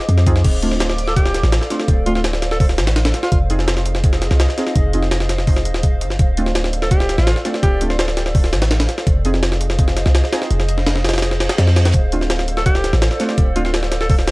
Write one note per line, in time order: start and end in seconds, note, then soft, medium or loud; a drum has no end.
0.00 0.42 G#4 medium
0.00 0.41 C5 medium
0.00 0.42 D#5 medium
0.00 0.42 F5 medium
0.00 0.45 D6 medium
0.09 0.43 F2 medium
0.09 closed hi-hat medium
0.18 snare soft
0.27 0.36 C4 medium
0.27 0.36 D#4 medium
0.27 0.36 F4 medium
0.27 0.36 G#4 loud
0.27 kick loud
0.27 closed hi-hat medium
0.36 snare medium
0.44 1.42 D1 loud
0.44 3.29 A4 medium
0.44 9.03 C5 medium
0.44 3.29 D5 medium
0.44 9.03 F5 medium
0.44 kick loud
0.44 closed hi-hat medium
0.44 crash medium
0.62 1.68 A3 medium
0.62 1.68 C4 medium
0.62 1.68 D4 medium
0.62 1.68 F4 medium
0.62 closed hi-hat medium
0.71 snare soft
0.80 snare loud
0.80 closed hi-hat medium
0.90 snare medium
0.98 closed hi-hat medium
1.07 1.15 A4 medium
1.07 snare medium
1.16 1.43 G4 medium
1.16 kick loud
1.16 closed hi-hat medium
1.26 snare medium
1.34 snare medium
1.34 closed hi-hat medium
1.43 1.60 A1 medium
1.43 snare medium
1.52 snare loud
1.52 closed hi-hat medium
1.61 snare soft
1.70 1.86 A3 medium
1.70 1.86 C4 medium
1.70 1.86 D4 medium
1.70 1.86 F4 medium
1.70 snare soft
1.70 closed hi-hat medium
1.80 snare soft
1.88 2.60 D1 loud
1.88 kick loud
1.88 closed hi-hat medium
2.06 2.16 A3 medium
2.06 2.16 C4 medium
2.06 2.16 D4 medium
2.06 2.12 F4 medium
2.06 2.16 F4 medium
2.06 closed hi-hat medium
2.15 2.21 F4 medium
2.15 snare soft
2.24 snare loud
2.24 closed hi-hat medium
2.33 snare medium
2.42 snare medium
2.42 closed hi-hat medium
2.51 2.57 A4 medium
2.51 snare soft
2.60 2.80 D1 medium
2.60 2.66 A4 medium
2.60 kick loud
2.60 open hi-hat medium
2.69 snare soft
2.78 3.13 A1 medium
2.78 snare loud
2.78 closed hi-hat medium
2.87 snare loud
2.87 closed hi-hat medium
2.96 snare loud
2.96 closed hi-hat medium
3.05 snare loud
3.05 closed hi-hat medium
3.14 snare soft
3.14 closed hi-hat medium
3.23 3.29 F4 medium
3.23 snare medium
3.32 4.29 F1 loud
3.32 3.38 F4 medium
3.32 6.17 G#4 medium
3.32 6.16 D#5 medium
3.32 kick loud
3.32 closed hi-hat medium
3.50 4.56 C4 medium
3.50 4.56 D#4 medium
3.50 4.56 F4 medium
3.50 4.56 G#4 medium
3.50 closed hi-hat medium
3.59 snare soft
3.68 snare loud
3.68 closed hi-hat medium
3.77 snare medium
3.86 closed hi-hat medium
3.95 snare medium
4.04 kick loud
4.04 closed hi-hat medium
4.13 snare medium
4.22 snare medium
4.22 closed hi-hat medium
4.31 4.47 C2 medium
4.31 snare medium
4.40 snare loud
4.40 closed hi-hat medium
4.49 snare soft
4.58 4.73 C4 medium
4.58 4.73 D#4 medium
4.58 4.73 F4 medium
4.58 4.73 G#4 medium
4.58 snare soft
4.58 closed hi-hat medium
4.67 snare soft
4.75 5.67 F1 loud
4.75 kick loud
4.75 closed hi-hat medium
4.93 5.04 C4 medium
4.93 5.04 D#4 medium
4.93 5.04 F4 medium
4.93 5.04 G#4 medium
4.93 closed hi-hat medium
5.03 snare soft
5.11 snare loud
5.11 closed hi-hat medium
5.20 snare medium
5.29 snare medium
5.29 closed hi-hat medium
5.38 snare soft
5.47 kick loud
5.47 open hi-hat medium
5.57 snare soft
5.65 6.03 D#1 loud
5.65 closed hi-hat medium
5.74 snare medium
5.83 kick loud
5.83 closed hi-hat medium
6.01 6.18 G1 medium
6.01 closed hi-hat medium
6.10 snare soft
6.19 7.17 D1 loud
6.19 9.04 A4 medium
6.19 9.04 D5 medium
6.19 kick loud
6.19 closed hi-hat medium
6.37 7.43 A3 medium
6.37 7.43 C4 medium
6.37 7.43 D4 medium
6.37 7.43 F4 medium
6.37 closed hi-hat medium
6.46 snare soft
6.55 snare loud
6.55 closed hi-hat medium
6.64 snare medium
6.73 closed hi-hat medium
6.82 6.89 A4 medium
6.82 snare medium
6.91 7.17 G4 medium
6.91 kick loud
6.91 closed hi-hat medium
7.00 snare medium
7.09 snare medium
7.09 closed hi-hat medium
7.18 7.34 A1 medium
7.18 7.40 F4 medium
7.18 snare medium
7.27 snare loud
7.27 closed hi-hat medium
7.36 snare soft
7.45 7.61 A3 medium
7.45 7.61 C4 medium
7.45 7.61 D4 medium
7.45 7.61 F4 medium
7.45 snare soft
7.45 closed hi-hat medium
7.54 snare soft
7.63 8.34 D1 loud
7.63 7.85 G4 loud
7.63 kick loud
7.63 closed hi-hat medium
7.81 7.91 A3 medium
7.81 7.91 C4 medium
7.81 7.91 D4 medium
7.81 7.91 F4 medium
7.81 closed hi-hat medium
7.90 7.96 C5 medium
7.90 snare soft
7.99 8.05 C5 medium
7.99 snare loud
7.99 closed hi-hat medium
8.08 snare medium
8.17 snare medium
8.17 closed hi-hat medium
8.26 snare soft
8.35 8.54 D1 loud
8.35 kick loud
8.35 open hi-hat medium
8.44 snare soft
8.53 8.87 A1 medium
8.53 snare loud
8.53 closed hi-hat medium
8.62 snare loud
8.62 closed hi-hat medium
8.71 snare loud
8.71 closed hi-hat medium
8.80 snare loud
8.80 closed hi-hat medium
8.89 snare soft
8.89 closed hi-hat medium
8.98 snare medium
9.07 10.04 F1 loud
9.07 11.91 G#4 medium
9.07 14.31 C5 medium
9.07 11.91 D#5 medium
9.07 14.31 F5 loud
9.07 kick loud
9.07 closed hi-hat medium
9.25 10.31 C4 medium
9.25 10.31 D#4 medium
9.25 10.31 F4 medium
9.25 10.31 G#4 medium
9.25 closed hi-hat medium
9.34 snare soft
9.43 snare loud
9.43 closed hi-hat medium
9.52 snare medium
9.61 closed hi-hat medium
9.70 snare medium
9.79 kick loud
9.79 closed hi-hat medium
9.88 snare medium
9.97 snare medium
9.97 closed hi-hat medium
10.06 10.22 C2 medium
10.06 snare medium
10.15 snare loud
10.15 closed hi-hat medium
10.24 snare soft
10.33 10.48 C4 medium
10.33 10.48 D#4 medium
10.33 10.48 F4 medium
10.33 10.48 G#4 medium
10.33 snare loud
10.33 closed hi-hat medium
10.42 snare medium
10.51 11.48 F1 loud
10.51 closed hi-hat medium
10.60 snare medium
10.69 closed hi-hat medium
10.78 snare soft
10.87 snare loud
10.87 closed hi-hat medium
10.96 snare medium
11.05 snare loud
11.05 closed hi-hat medium
11.09 snare medium
11.09 closed hi-hat medium
11.14 snare medium
11.14 closed hi-hat medium
11.18 snare medium
11.18 closed hi-hat medium
11.22 snare loud
11.22 closed hi-hat medium
11.22 reverse cymbal medium
11.31 snare medium
11.40 snare loud
11.40 closed hi-hat medium
11.49 snare loud
11.49 closed hi-hat medium
11.58 11.93 F2 medium
11.58 snare loud
11.58 closed hi-hat medium
11.67 snare medium
11.76 snare loud
11.76 closed hi-hat medium
11.85 snare loud
11.85 closed hi-hat medium
11.94 12.92 D1 loud
11.94 14.31 A4 medium
11.94 14.31 D5 medium
11.94 kick loud
11.94 closed hi-hat medium
12.12 13.18 A3 medium
12.12 13.18 C4 medium
12.12 13.18 D4 medium
12.12 13.18 F4 medium
12.12 closed hi-hat medium
12.21 snare soft
12.30 snare loud
12.30 closed hi-hat medium
12.39 snare medium
12.48 closed hi-hat medium
12.57 12.64 A4 medium
12.57 snare medium
12.66 12.93 G4 medium
12.66 kick loud
12.66 closed hi-hat medium
12.75 snare medium
12.84 snare medium
12.84 closed hi-hat medium
12.93 13.09 A1 medium
12.93 snare medium
13.02 snare loud
13.02 closed hi-hat medium
13.11 snare soft
13.20 13.36 A3 medium
13.20 13.36 C4 medium
13.20 13.36 D4 medium
13.20 13.36 F4 medium
13.20 snare soft
13.20 closed hi-hat medium
13.29 snare soft
13.38 14.09 D1 loud
13.38 kick loud
13.38 closed hi-hat medium
13.56 13.66 A3 medium
13.56 13.66 C4 medium
13.56 13.66 D4 medium
13.56 13.66 F4 medium
13.56 13.62 F4 medium
13.56 closed hi-hat medium
13.65 13.71 F4 medium
13.65 snare soft
13.74 snare loud
13.74 closed hi-hat medium
13.83 snare medium
13.92 snare medium
13.92 closed hi-hat medium
14.01 14.07 A4 medium
14.01 snare soft
14.10 14.29 D1 loud
14.10 14.16 A4 medium
14.10 kick loud
14.10 open hi-hat medium
14.19 snare soft
14.28 14.31 A1 medium
14.28 snare loud
14.28 closed hi-hat medium